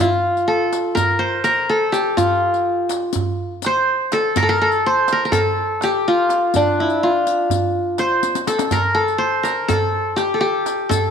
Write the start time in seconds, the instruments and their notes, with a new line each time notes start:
0.00 qanun F4, riq, darbuka dum
0.26 darbuka ka
0.37 riq
0.48 qanun A4, darbuka ka
0.73 riq, darbuka tek
0.95 qanun A#4, riq, darbuka dum
1.19 qanun C5
1.44 qanun A#4, riq, darbuka tek
1.69 qanun A4
1.92 qanun G4, riq, darbuka tek
2.17 qanun F4, riq, darbuka dum
2.54 riq
2.66 darbuka ka
2.89 riq, darbuka tek
3.13 riq, darbuka dum
3.62 riq, darbuka tek
3.66 qanun C5
4.12 qanun A4, riq, darbuka tek
4.36 qanun A#4, riq, darbuka dum
4.43 qanun A4
4.49 qanun A#4
4.60 qanun A4, darbuka ka
4.72 riq, darbuka ka
4.86 qanun C5
5.08 riq, darbuka tek
5.12 qanun A#4
5.25 qanun A#4
5.32 qanun A4, riq, darbuka dum
5.81 qanun G4, riq, darbuka tek
6.08 qanun F4
6.29 riq, darbuka tek
6.54 qanun D4, riq, darbuka dum
6.80 qanun E4
6.90 riq
7.03 qanun F4
7.27 riq
7.50 riq, darbuka dum
7.98 qanun C5, riq, darbuka tek
8.23 riq, darbuka tek
8.35 riq, darbuka ka
8.47 qanun A4, riq, darbuka tek
8.58 riq, darbuka ka
8.71 qanun A#4, riq, darbuka dum
8.95 qanun A4, darbuka ka
9.08 riq, darbuka ka
9.18 qanun C5, darbuka ka
9.43 qanun A#4, riq, darbuka tek
9.68 qanun A4, riq, darbuka dum
10.16 qanun G4, riq, darbuka tek
10.34 qanun A4
10.41 qanun G4
10.66 riq, darbuka tek
10.89 qanun A4, riq, darbuka dum